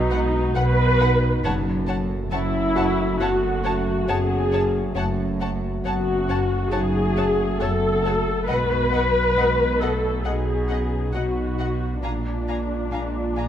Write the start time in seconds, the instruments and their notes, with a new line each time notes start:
Already playing: double bass section B1, sub bass B1, cello section B2, clarinet F#3, french horn section B3 F#4, viola section D#4, grand piano E6
0.10 marimba B2, clarinet G#3, violin section B4 F#5
0.54 double bass section B1, cello section B2, marimba B2, clarinet F#3, viola section B4, violin section B4 F#5
1.00 marimba B2, clarinet D#4, violin section B4 F#5
1.43 double bass section F#1, sub bass F#1, cello section F#2, marimba F#2, timpani F#2, french horn section A3 F#4, violin section C#5 F#5 A5
1.87 marimba F#3, violin section C#5 F#5 A5
2.31 double bass section F#1, cello section F#2, marimba F#3, clarinet C#4, viola section E4, violin section C#5 F#5 A5
2.76 marimba F#2, grand piano F#4 F#5, violin section C#5 F#5 A5
3.20 double bass section F#1, cello section F#2, marimba F#3, clarinet B3, viola section F#4, violin section C#5 F#5 A5
3.63 marimba F#2, clarinet A3, violin section C#5 F#5 A5
4.06 double bass section F#1, cello section F#2, marimba F#2, clarinet B3, viola section G#4, violin section C#5 F#5 A5
4.51 marimba F#2, clarinet C#4, violin section C#5 F#5 A5
4.95 sub bass F#1, double bass section F#1, cello section F#2, marimba F#2, clarinet A3, french horn section A3 F#4, violin section C#5 F#5 A5
5.40 marimba F#3, violin section C#5 F#5 A5
5.84 double bass section F#1, cello section F#2, marimba F#3, clarinet B3, viola section F#4, violin section C#5 F#5 A5
6.28 marimba F#2, clarinet C#4, violin section C#5 F#5 A5
6.72 double bass section F#1, cello section F#2, marimba F#3, clarinet D#4, viola section G#4, violin section C#5 F#5 A5
7.16 marimba F#2, clarinet C#4, violin section C#5 F#5 A5
7.60 double bass section F#1, marimba F#2, cello section F#2, clarinet B3, viola section A4, violin section C#5 F#5 A5
8.04 marimba F#2, clarinet A3, violin section C#5 F#5 A5
8.47 double bass section B1, sub bass B1, marimba B2, cello section B2, french horn section F#3 D#4, clarinet G#3, viola section B4, violin section D#5 F#5
8.92 clarinet F#3, marimba B3, violin section D#5 F#5
9.37 double bass section B1, cello section B2, clarinet G#3, marimba B3, violin section D#5 F#5
9.80 marimba B2, clarinet A3, viola section A4, violin section D#5 F#5
10.25 double bass section B1, cello section B2, marimba B3, clarinet B3, viola section G#4, violin section D#5 F#5
10.69 marimba B2, clarinet C#4, violin section D#5 F#5
11.13 double bass section B1, cello section B2, marimba B2, clarinet D#4, viola section F#4, violin section D#5 F#5
11.59 marimba B2, violin section D#5 F#5
12.02 sub bass A#1, double bass section A#1, cello section A#2, marimba A#2, french horn section G#3 F4, viola section D4, clarinet F4, violin section F5 G#5 A#5
12.48 marimba A#3, violin section F5 G#5 A#5
12.91 double bass section A#1, cello section A#2, marimba A#3, violin section F5 G#5 A#5
13.36 marimba A#2, violin section F5 G#5 A#5